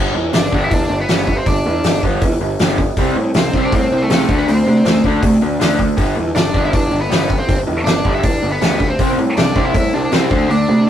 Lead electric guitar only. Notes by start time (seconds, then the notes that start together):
0.35 D4 D5
0.64 E4 E5
0.73 D4 D5
1.01 B3 B4
1.38 C4 C5
1.47 D4 D5
3.38 C4 C5
3.64 D4 D5
3.75 C4 C5
4.02 A3 A4
4.39 B3 B4
4.49 C4 C5
6.36 D4 D5
6.65 E4 E5
6.74 D4 D5
7.01 B3 B4
7.39 C4 C5
7.84 D4 D5
8.15 E4 E5
8.24 D4 D5
8.52 B3 B4
8.90 C4 C5
9.37 D4 D5
9.65 E4 E5
9.76 E4 E5
9.94 D4 D5
10.13 C4 C5
10.33 C4 C5
10.50 D4 D5